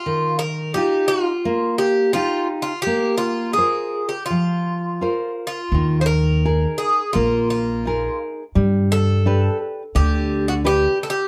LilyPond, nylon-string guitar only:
\new Staff \with { instrumentName = "Nylon-string guitar" } { \time 4/4 \key ees \mixolydian \tempo 4 = 85 ees4 <ees' f' g'>4 bes4 <ees' f' g'>4 | bes4 <f' bes' c''>4 f4 <f' bes' c''>4 | ees4 <ees' aes' bes'>4 bes4 <ees' aes' bes'>4 | g4 <d' g' b'>4 d4 <d' g' b'>4 | }